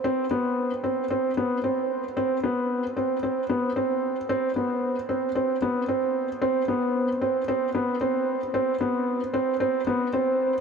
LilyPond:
\new Staff \with { instrumentName = "Felt piano" } { \time 4/4 \key c \major \tempo 4 = 113 c'8 b4 c'8 c'8 b8 c'4 | c'8 b4 c'8 c'8 b8 c'4 | c'8 b4 c'8 c'8 b8 c'4 | c'8 b4 c'8 c'8 b8 c'4 |
c'8 b4 c'8 c'8 b8 c'4 | }